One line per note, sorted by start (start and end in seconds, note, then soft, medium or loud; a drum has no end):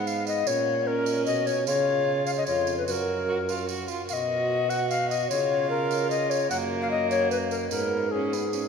0.00 0.43 G#2 medium
0.00 0.43 B3 medium
0.07 0.27 F5 medium
0.07 tambourine soft
0.27 0.49 D#5 medium
0.27 tambourine soft
0.46 1.29 A#2 medium
0.46 0.85 C#4 medium
0.46 0.89 C#5 medium
0.46 tambourine medium
0.86 1.69 C#4 medium
0.86 1.26 A#4 medium
1.06 tambourine soft
1.26 1.69 B2 medium
1.26 1.48 D#5 medium
1.26 tambourine soft
1.47 1.67 C#5 medium
1.47 tambourine soft
1.67 2.47 C#3 medium
1.67 2.47 F4 medium
1.67 2.26 C#5 medium
1.67 tambourine medium
2.27 2.31 F5 medium
2.27 tambourine soft
2.37 2.46 D#5 medium
2.46 2.90 F2 medium
2.46 2.87 F4 medium
2.46 2.77 C#5 medium
2.46 tambourine soft
2.67 tambourine soft
2.78 2.86 B4 medium
2.87 3.89 F#2 medium
2.87 3.24 F#4 medium
2.87 2.92 B4 medium
2.87 tambourine medium
2.91 3.67 A#4 medium
3.28 3.36 F#4 medium
3.49 3.68 F4 medium
3.49 tambourine soft
3.69 3.89 F#4 medium
3.69 tambourine soft
3.88 4.09 F4 medium
3.88 tambourine soft
4.09 5.26 B2 medium
4.09 5.32 F#4 medium
4.09 4.14 F5 medium
4.09 tambourine medium
4.13 4.71 D#5 medium
4.70 4.89 F#5 medium
4.70 tambourine soft
4.90 5.09 F5 medium
4.90 tambourine medium
5.10 5.29 D#5 medium
5.10 tambourine soft
5.30 6.48 C#3 medium
5.30 6.50 F4 medium
5.30 5.69 C#5 medium
5.30 tambourine medium
5.70 6.09 A#4 medium
5.91 tambourine soft
6.10 6.32 D#5 loud
6.10 tambourine soft
6.30 6.50 C#5 medium
6.30 tambourine soft
6.50 7.69 F#2 medium
6.50 7.69 A#3 medium
6.50 6.57 F#5 medium
6.50 tambourine medium
6.82 6.90 F5 medium
6.91 7.10 D#5 medium
7.11 7.30 C#5 medium
7.11 tambourine soft
7.31 7.37 B4 medium
7.31 tambourine soft
7.51 7.57 A#4 medium
7.51 tambourine soft
7.71 8.68 G#2 medium
7.71 8.12 B3 medium
7.71 8.13 A#4 medium
7.71 tambourine medium
8.11 8.34 C#4 medium
8.11 8.68 G#4 medium
8.33 8.52 B3 medium
8.33 tambourine soft
8.53 8.61 C#4 medium
8.53 tambourine soft